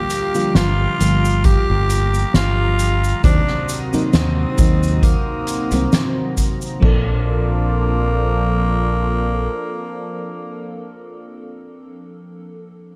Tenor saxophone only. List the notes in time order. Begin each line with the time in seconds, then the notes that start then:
Already playing: G4
0.56 F4
1.45 G4
2.35 F4
3.24 D4
4.14 C4
5.04 A#3
6.82 A#3